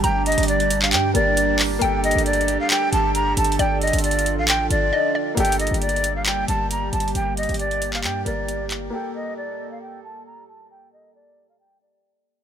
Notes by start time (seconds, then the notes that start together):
Already playing: G3 A3 A#3 D4 G4
0.04 G1 G5 A#5, closed hi-hat
0.26 D#5, closed hi-hat
0.32 closed hi-hat
0.38 G1, closed hi-hat
0.43 closed hi-hat
0.48 D5, closed hi-hat
0.60 closed hi-hat
0.70 closed hi-hat
0.82 F5, clap
0.92 G2 G5, clap, closed hi-hat
1.14 G1 A#3 G4 A#4 D5, closed hi-hat
1.37 closed hi-hat
1.59 clap, open hi-hat
1.79 G1 A#3 G4 A4 G5, closed hi-hat
1.84 A4
2.04 D#5, closed hi-hat
2.11 closed hi-hat
2.15 G1, closed hi-hat
2.26 D5, closed hi-hat
2.33 closed hi-hat
2.41 closed hi-hat
2.48 closed hi-hat
2.60 F5
2.70 G5, clap, closed hi-hat
2.93 G1 A5, closed hi-hat
3.15 A#5, closed hi-hat
3.37 G1 A5, closed hi-hat
3.44 closed hi-hat
3.52 closed hi-hat
3.59 G1 F4 D5 G5, closed hi-hat
3.81 D#5, closed hi-hat
3.87 closed hi-hat
3.93 G1, closed hi-hat
3.99 closed hi-hat
4.04 D5, closed hi-hat
4.11 closed hi-hat
4.19 closed hi-hat
4.26 closed hi-hat
4.38 A1 F5
4.48 G5, clap, closed hi-hat
4.70 G1 D5, closed hi-hat
4.93 D#5
5.15 D5
5.35 G1 G3 A#3 G4 G5, closed hi-hat
5.40 A4
5.45 closed hi-hat
5.52 closed hi-hat
5.59 D#5, closed hi-hat
5.67 closed hi-hat
5.71 G1, closed hi-hat
5.82 D5, closed hi-hat
5.89 closed hi-hat
5.96 closed hi-hat
6.04 closed hi-hat
6.16 F5
6.26 G5, clap, closed hi-hat
6.48 G1 A5, closed hi-hat
6.71 A#5, closed hi-hat
6.93 G1 A5, closed hi-hat
7.00 closed hi-hat
7.08 closed hi-hat
7.15 G1 G5, closed hi-hat
7.37 D#5, closed hi-hat
7.43 closed hi-hat
7.49 G1, closed hi-hat
7.54 closed hi-hat
7.59 D5, closed hi-hat
7.71 closed hi-hat
7.82 closed hi-hat
7.93 F5, clap
8.04 G2 G5, clap, closed hi-hat
8.25 G1 A#3 G4 A#4 D5, closed hi-hat
8.48 closed hi-hat
8.71 clap, closed hi-hat
8.90 A#3 G4 A4 G5
8.95 A4
9.15 D#5
9.37 D5
9.71 F5
9.82 G5
10.04 A5
10.26 A#5
10.48 A5
10.70 G5
10.93 D#5
11.15 D5
11.49 F5
11.60 G5
11.81 D5